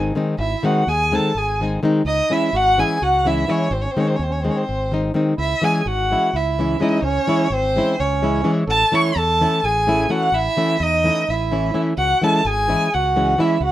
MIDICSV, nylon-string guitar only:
0, 0, Header, 1, 2, 480
1, 0, Start_track
1, 0, Tempo, 474308
1, 398, Time_signature, 7, 3, 24, 8
1, 6876, Tempo, 470219
1, 13944, End_track
2, 0, Start_track
2, 0, Title_t, "Nylon-string guitar"
2, 0, Program_c, 0, 24
2, 0, Note_on_c, 0, 51, 53
2, 0, Note_on_c, 0, 56, 47
2, 0, Note_on_c, 0, 60, 51
2, 0, Note_on_c, 0, 63, 64
2, 131, Note_off_c, 0, 51, 0
2, 132, Note_off_c, 0, 56, 0
2, 134, Note_off_c, 0, 60, 0
2, 138, Note_off_c, 0, 63, 0
2, 154, Note_on_c, 0, 51, 76
2, 160, Note_on_c, 0, 56, 66
2, 166, Note_on_c, 0, 60, 59
2, 175, Note_on_c, 0, 63, 76
2, 346, Note_off_c, 0, 51, 0
2, 349, Note_off_c, 0, 56, 0
2, 352, Note_off_c, 0, 60, 0
2, 357, Note_off_c, 0, 63, 0
2, 638, Note_on_c, 0, 51, 66
2, 647, Note_on_c, 0, 56, 60
2, 654, Note_on_c, 0, 60, 57
2, 666, Note_on_c, 0, 63, 72
2, 834, Note_off_c, 0, 51, 0
2, 838, Note_off_c, 0, 56, 0
2, 842, Note_off_c, 0, 60, 0
2, 848, Note_off_c, 0, 63, 0
2, 1135, Note_on_c, 0, 51, 60
2, 1137, Note_on_c, 0, 56, 51
2, 1148, Note_on_c, 0, 60, 54
2, 1149, Note_on_c, 0, 63, 59
2, 1327, Note_off_c, 0, 56, 0
2, 1328, Note_off_c, 0, 51, 0
2, 1333, Note_off_c, 0, 63, 0
2, 1334, Note_off_c, 0, 60, 0
2, 1625, Note_on_c, 0, 51, 51
2, 1632, Note_on_c, 0, 56, 48
2, 1635, Note_on_c, 0, 60, 52
2, 1646, Note_on_c, 0, 63, 63
2, 1809, Note_off_c, 0, 51, 0
2, 1813, Note_off_c, 0, 56, 0
2, 1813, Note_off_c, 0, 60, 0
2, 1819, Note_off_c, 0, 63, 0
2, 1849, Note_on_c, 0, 51, 77
2, 1855, Note_on_c, 0, 56, 71
2, 1857, Note_on_c, 0, 60, 66
2, 1871, Note_on_c, 0, 63, 85
2, 2036, Note_off_c, 0, 51, 0
2, 2038, Note_off_c, 0, 56, 0
2, 2039, Note_off_c, 0, 60, 0
2, 2047, Note_off_c, 0, 63, 0
2, 2326, Note_on_c, 0, 52, 57
2, 2332, Note_on_c, 0, 56, 53
2, 2337, Note_on_c, 0, 61, 59
2, 2344, Note_on_c, 0, 64, 69
2, 2520, Note_off_c, 0, 52, 0
2, 2523, Note_off_c, 0, 56, 0
2, 2525, Note_off_c, 0, 61, 0
2, 2529, Note_off_c, 0, 64, 0
2, 2810, Note_on_c, 0, 52, 65
2, 2818, Note_on_c, 0, 56, 48
2, 2820, Note_on_c, 0, 61, 54
2, 2829, Note_on_c, 0, 64, 59
2, 3007, Note_off_c, 0, 52, 0
2, 3009, Note_off_c, 0, 56, 0
2, 3012, Note_off_c, 0, 61, 0
2, 3016, Note_off_c, 0, 64, 0
2, 3287, Note_on_c, 0, 52, 58
2, 3292, Note_on_c, 0, 56, 56
2, 3302, Note_on_c, 0, 61, 58
2, 3311, Note_on_c, 0, 64, 75
2, 3481, Note_off_c, 0, 52, 0
2, 3484, Note_off_c, 0, 56, 0
2, 3489, Note_off_c, 0, 61, 0
2, 3493, Note_off_c, 0, 64, 0
2, 3522, Note_on_c, 0, 52, 66
2, 3532, Note_on_c, 0, 61, 60
2, 3534, Note_on_c, 0, 56, 53
2, 3538, Note_on_c, 0, 64, 78
2, 3713, Note_off_c, 0, 52, 0
2, 3717, Note_off_c, 0, 61, 0
2, 3719, Note_off_c, 0, 56, 0
2, 3721, Note_off_c, 0, 64, 0
2, 4014, Note_on_c, 0, 51, 62
2, 4015, Note_on_c, 0, 56, 55
2, 4023, Note_on_c, 0, 60, 59
2, 4026, Note_on_c, 0, 63, 67
2, 4204, Note_off_c, 0, 51, 0
2, 4204, Note_off_c, 0, 56, 0
2, 4209, Note_off_c, 0, 60, 0
2, 4209, Note_off_c, 0, 63, 0
2, 4492, Note_on_c, 0, 51, 54
2, 4497, Note_on_c, 0, 56, 50
2, 4501, Note_on_c, 0, 60, 48
2, 4510, Note_on_c, 0, 63, 61
2, 4688, Note_off_c, 0, 51, 0
2, 4688, Note_off_c, 0, 56, 0
2, 4692, Note_off_c, 0, 60, 0
2, 4696, Note_off_c, 0, 63, 0
2, 4974, Note_on_c, 0, 51, 54
2, 4981, Note_on_c, 0, 56, 44
2, 4982, Note_on_c, 0, 60, 44
2, 4996, Note_on_c, 0, 63, 68
2, 5165, Note_off_c, 0, 51, 0
2, 5166, Note_off_c, 0, 56, 0
2, 5168, Note_off_c, 0, 60, 0
2, 5175, Note_off_c, 0, 63, 0
2, 5204, Note_on_c, 0, 51, 76
2, 5207, Note_on_c, 0, 56, 67
2, 5214, Note_on_c, 0, 60, 59
2, 5223, Note_on_c, 0, 63, 75
2, 5393, Note_off_c, 0, 51, 0
2, 5395, Note_off_c, 0, 56, 0
2, 5397, Note_off_c, 0, 60, 0
2, 5403, Note_off_c, 0, 63, 0
2, 5684, Note_on_c, 0, 52, 63
2, 5697, Note_on_c, 0, 56, 55
2, 5703, Note_on_c, 0, 61, 56
2, 5704, Note_on_c, 0, 64, 66
2, 5878, Note_off_c, 0, 52, 0
2, 5885, Note_off_c, 0, 56, 0
2, 5887, Note_off_c, 0, 61, 0
2, 5887, Note_off_c, 0, 64, 0
2, 6182, Note_on_c, 0, 52, 53
2, 6186, Note_on_c, 0, 56, 54
2, 6192, Note_on_c, 0, 61, 51
2, 6198, Note_on_c, 0, 64, 64
2, 6370, Note_off_c, 0, 52, 0
2, 6372, Note_off_c, 0, 56, 0
2, 6376, Note_off_c, 0, 61, 0
2, 6377, Note_off_c, 0, 64, 0
2, 6667, Note_on_c, 0, 52, 59
2, 6670, Note_on_c, 0, 56, 50
2, 6677, Note_on_c, 0, 61, 53
2, 6686, Note_on_c, 0, 64, 68
2, 6848, Note_off_c, 0, 52, 0
2, 6848, Note_off_c, 0, 56, 0
2, 6853, Note_off_c, 0, 61, 0
2, 6857, Note_off_c, 0, 64, 0
2, 6880, Note_on_c, 0, 52, 63
2, 6885, Note_on_c, 0, 56, 61
2, 6894, Note_on_c, 0, 61, 61
2, 6907, Note_on_c, 0, 64, 64
2, 7070, Note_off_c, 0, 52, 0
2, 7072, Note_off_c, 0, 56, 0
2, 7077, Note_off_c, 0, 61, 0
2, 7083, Note_off_c, 0, 64, 0
2, 7364, Note_on_c, 0, 52, 66
2, 7371, Note_on_c, 0, 56, 62
2, 7376, Note_on_c, 0, 61, 54
2, 7382, Note_on_c, 0, 64, 67
2, 7558, Note_off_c, 0, 52, 0
2, 7561, Note_off_c, 0, 56, 0
2, 7564, Note_off_c, 0, 61, 0
2, 7567, Note_off_c, 0, 64, 0
2, 7862, Note_on_c, 0, 56, 50
2, 7867, Note_on_c, 0, 52, 53
2, 7877, Note_on_c, 0, 61, 54
2, 7883, Note_on_c, 0, 64, 56
2, 8052, Note_off_c, 0, 56, 0
2, 8055, Note_off_c, 0, 52, 0
2, 8060, Note_off_c, 0, 61, 0
2, 8063, Note_off_c, 0, 64, 0
2, 8332, Note_on_c, 0, 52, 55
2, 8336, Note_on_c, 0, 56, 57
2, 8341, Note_on_c, 0, 61, 50
2, 8352, Note_on_c, 0, 64, 67
2, 8524, Note_off_c, 0, 52, 0
2, 8526, Note_off_c, 0, 56, 0
2, 8528, Note_off_c, 0, 61, 0
2, 8534, Note_off_c, 0, 64, 0
2, 8555, Note_on_c, 0, 52, 72
2, 8560, Note_on_c, 0, 56, 59
2, 8565, Note_on_c, 0, 61, 55
2, 8565, Note_on_c, 0, 64, 76
2, 8750, Note_off_c, 0, 52, 0
2, 8753, Note_off_c, 0, 56, 0
2, 8753, Note_off_c, 0, 61, 0
2, 8755, Note_off_c, 0, 64, 0
2, 9045, Note_on_c, 0, 52, 71
2, 9051, Note_on_c, 0, 57, 60
2, 9059, Note_on_c, 0, 61, 61
2, 9063, Note_on_c, 0, 64, 80
2, 9240, Note_off_c, 0, 52, 0
2, 9244, Note_off_c, 0, 57, 0
2, 9248, Note_off_c, 0, 61, 0
2, 9249, Note_off_c, 0, 64, 0
2, 9545, Note_on_c, 0, 52, 64
2, 9551, Note_on_c, 0, 57, 51
2, 9552, Note_on_c, 0, 61, 55
2, 9558, Note_on_c, 0, 64, 58
2, 9736, Note_off_c, 0, 52, 0
2, 9737, Note_off_c, 0, 57, 0
2, 9737, Note_off_c, 0, 61, 0
2, 9742, Note_off_c, 0, 64, 0
2, 10015, Note_on_c, 0, 52, 63
2, 10019, Note_on_c, 0, 57, 59
2, 10023, Note_on_c, 0, 61, 53
2, 10034, Note_on_c, 0, 64, 63
2, 10206, Note_off_c, 0, 52, 0
2, 10209, Note_off_c, 0, 57, 0
2, 10209, Note_off_c, 0, 61, 0
2, 10216, Note_off_c, 0, 64, 0
2, 10240, Note_on_c, 0, 52, 61
2, 10250, Note_on_c, 0, 57, 58
2, 10256, Note_on_c, 0, 61, 57
2, 10263, Note_on_c, 0, 64, 71
2, 10433, Note_off_c, 0, 52, 0
2, 10438, Note_off_c, 0, 57, 0
2, 10441, Note_off_c, 0, 61, 0
2, 10444, Note_off_c, 0, 64, 0
2, 10728, Note_on_c, 0, 52, 69
2, 10736, Note_on_c, 0, 57, 61
2, 10738, Note_on_c, 0, 61, 53
2, 10743, Note_on_c, 0, 64, 68
2, 10923, Note_off_c, 0, 52, 0
2, 10924, Note_off_c, 0, 57, 0
2, 10927, Note_off_c, 0, 61, 0
2, 10930, Note_off_c, 0, 64, 0
2, 11209, Note_on_c, 0, 52, 55
2, 11217, Note_on_c, 0, 57, 52
2, 11221, Note_on_c, 0, 61, 55
2, 11228, Note_on_c, 0, 64, 60
2, 11407, Note_off_c, 0, 52, 0
2, 11409, Note_off_c, 0, 57, 0
2, 11413, Note_off_c, 0, 61, 0
2, 11416, Note_off_c, 0, 64, 0
2, 11695, Note_on_c, 0, 52, 55
2, 11700, Note_on_c, 0, 57, 48
2, 11703, Note_on_c, 0, 61, 54
2, 11709, Note_on_c, 0, 64, 64
2, 11885, Note_off_c, 0, 52, 0
2, 11886, Note_off_c, 0, 57, 0
2, 11889, Note_off_c, 0, 61, 0
2, 11892, Note_off_c, 0, 64, 0
2, 11925, Note_on_c, 0, 52, 66
2, 11927, Note_on_c, 0, 61, 54
2, 11930, Note_on_c, 0, 57, 53
2, 11937, Note_on_c, 0, 64, 59
2, 12114, Note_off_c, 0, 52, 0
2, 12115, Note_off_c, 0, 61, 0
2, 12117, Note_off_c, 0, 57, 0
2, 12118, Note_off_c, 0, 64, 0
2, 12410, Note_on_c, 0, 52, 66
2, 12424, Note_on_c, 0, 56, 60
2, 12429, Note_on_c, 0, 61, 57
2, 12435, Note_on_c, 0, 64, 65
2, 12602, Note_off_c, 0, 52, 0
2, 12609, Note_off_c, 0, 56, 0
2, 12610, Note_off_c, 0, 61, 0
2, 12614, Note_off_c, 0, 64, 0
2, 12886, Note_on_c, 0, 52, 56
2, 12896, Note_on_c, 0, 56, 46
2, 12899, Note_on_c, 0, 61, 52
2, 12903, Note_on_c, 0, 64, 62
2, 13083, Note_off_c, 0, 52, 0
2, 13088, Note_off_c, 0, 56, 0
2, 13089, Note_off_c, 0, 61, 0
2, 13090, Note_off_c, 0, 64, 0
2, 13375, Note_on_c, 0, 52, 58
2, 13378, Note_on_c, 0, 56, 52
2, 13383, Note_on_c, 0, 61, 54
2, 13388, Note_on_c, 0, 64, 62
2, 13563, Note_off_c, 0, 52, 0
2, 13564, Note_off_c, 0, 56, 0
2, 13567, Note_off_c, 0, 61, 0
2, 13569, Note_off_c, 0, 64, 0
2, 13600, Note_on_c, 0, 52, 70
2, 13606, Note_on_c, 0, 56, 58
2, 13613, Note_on_c, 0, 61, 65
2, 13620, Note_on_c, 0, 64, 71
2, 13789, Note_off_c, 0, 52, 0
2, 13792, Note_off_c, 0, 56, 0
2, 13796, Note_off_c, 0, 61, 0
2, 13799, Note_off_c, 0, 64, 0
2, 13944, End_track
0, 0, End_of_file